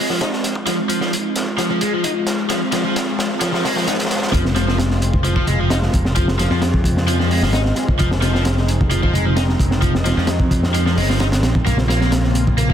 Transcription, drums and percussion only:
0.10 snare
0.21 snare, closed hi-hat
0.33 snare
0.44 snare, closed hi-hat
0.55 kick
0.67 snare, closed hi-hat
0.90 closed hi-hat
1.01 snare
1.13 closed hi-hat
1.36 snare, closed hi-hat
1.58 snare, closed hi-hat
1.81 closed hi-hat
2.04 closed hi-hat
2.27 snare, closed hi-hat
2.50 snare, closed hi-hat
2.72 snare, closed hi-hat
2.96 snare, closed hi-hat
3.19 snare, closed hi-hat
3.41 snare, closed hi-hat
3.54 snare
3.65 snare, open hi-hat
3.77 snare
3.88 snare, closed hi-hat
3.93 snare
3.99 snare, closed hi-hat
4.05 snare
4.11 snare, closed hi-hat
4.16 snare
4.22 snare
4.27 snare
4.33 kick, closed hi-hat
4.45 snare
4.56 snare, closed hi-hat
4.68 snare
4.78 snare, closed hi-hat
4.91 snare
5.02 closed hi-hat
5.13 kick
5.24 closed hi-hat
5.36 kick
5.47 closed hi-hat
5.70 snare, closed hi-hat
5.83 snare
5.94 kick, closed hi-hat
6.05 snare
6.16 kick, closed hi-hat
6.28 snare
6.39 snare, closed hi-hat
6.51 snare
6.62 snare, closed hi-hat
6.74 kick
6.84 kick, closed hi-hat
6.97 snare
7.08 closed hi-hat
7.20 snare
7.31 open hi-hat
7.43 snare
7.53 snare, closed hi-hat
7.65 snare
7.76 snare, closed hi-hat
7.88 kick
7.99 kick, closed hi-hat
8.11 snare
8.22 snare, closed hi-hat
8.35 snare
8.45 snare, closed hi-hat
8.57 snare
8.68 closed hi-hat
8.81 kick
8.91 closed hi-hat
9.03 kick
9.15 closed hi-hat
9.37 snare, closed hi-hat
9.49 snare
9.60 kick, closed hi-hat
9.71 snare
9.82 kick, closed hi-hat
9.95 snare
10.05 snare, closed hi-hat
10.17 snare
10.27 snare, closed hi-hat
10.40 kick
10.51 kick, closed hi-hat
10.63 snare
10.74 closed hi-hat
10.86 snare
10.98 open hi-hat
11.10 snare
11.20 snare, closed hi-hat
11.32 snare, closed hi-hat
11.43 snare, closed hi-hat
11.55 kick
11.67 kick, closed hi-hat
11.78 snare
11.89 snare, closed hi-hat
12.01 snare
12.12 snare, closed hi-hat
12.24 snare
12.35 closed hi-hat
12.47 kick
12.58 closed hi-hat
12.70 kick

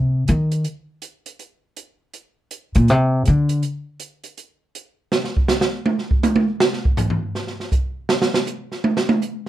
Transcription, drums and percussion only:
0.28 closed hi-hat
0.52 closed hi-hat
0.64 closed hi-hat
1.02 closed hi-hat
1.26 closed hi-hat
1.39 closed hi-hat
1.76 closed hi-hat
2.14 closed hi-hat
2.51 closed hi-hat
2.75 closed hi-hat
2.88 closed hi-hat
3.25 closed hi-hat
3.49 closed hi-hat
3.63 closed hi-hat
4.00 closed hi-hat
4.24 closed hi-hat
4.37 closed hi-hat
4.75 closed hi-hat
5.12 snare
5.24 snare
5.37 kick
5.48 snare, hi-hat pedal
5.61 snare
5.86 high tom
5.99 snare
6.11 kick
6.23 hi-hat pedal, high tom
6.36 high tom
6.60 snare
6.73 snare
6.85 kick
6.97 floor tom, hi-hat pedal
7.10 floor tom
7.35 snare
7.47 snare
7.60 snare
7.72 kick, hi-hat pedal
8.09 snare
8.22 snare
8.34 snare
8.47 hi-hat pedal
8.72 snare
8.84 high tom
8.97 snare
9.09 high tom
9.22 hi-hat pedal

